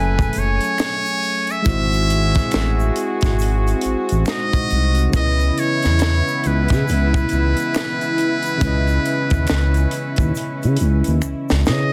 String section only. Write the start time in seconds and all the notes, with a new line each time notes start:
Already playing: A3 G#5
1.65 C4 F#4
5.13 E3 B3 E4
8.61 C#4